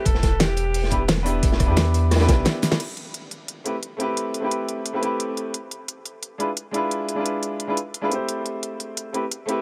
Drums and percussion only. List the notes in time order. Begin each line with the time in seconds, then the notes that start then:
0.05 kick, closed hi-hat
0.14 snare
0.23 kick, snare, closed hi-hat
0.40 snare, closed hi-hat
0.57 closed hi-hat
0.74 closed hi-hat, open hi-hat
0.83 snare
0.91 kick, closed hi-hat
1.08 snare, closed hi-hat
1.18 snare
1.26 cross-stick, closed hi-hat, open hi-hat
1.43 kick, closed hi-hat
1.52 snare
1.60 kick, cross-stick, closed hi-hat
1.76 snare, closed hi-hat
1.94 closed hi-hat
2.11 cross-stick, snare, closed hi-hat
2.16 snare, closed hi-hat
2.20 snare, closed hi-hat
2.28 kick, snare, closed hi-hat
2.45 snare, closed hi-hat
2.62 snare, closed hi-hat, open hi-hat
2.71 snare, closed hi-hat
2.80 closed hi-hat, crash
2.97 closed hi-hat
3.14 closed hi-hat
3.31 closed hi-hat
3.48 closed hi-hat
3.66 closed hi-hat
3.83 closed hi-hat
4.00 closed hi-hat
4.17 closed hi-hat
4.34 closed hi-hat
4.51 closed hi-hat
4.69 closed hi-hat
4.86 closed hi-hat
5.03 closed hi-hat
5.20 closed hi-hat
5.37 closed hi-hat
5.54 closed hi-hat
5.71 closed hi-hat
5.88 closed hi-hat
6.06 closed hi-hat
6.23 closed hi-hat
6.40 closed hi-hat
6.57 closed hi-hat
6.74 closed hi-hat
6.91 closed hi-hat
7.09 closed hi-hat
7.26 closed hi-hat
7.43 closed hi-hat
7.60 closed hi-hat
7.77 closed hi-hat
7.94 closed hi-hat
8.12 closed hi-hat
8.29 closed hi-hat
8.46 closed hi-hat
8.63 closed hi-hat
8.80 closed hi-hat
8.97 closed hi-hat
9.14 closed hi-hat
9.32 closed hi-hat
9.49 closed hi-hat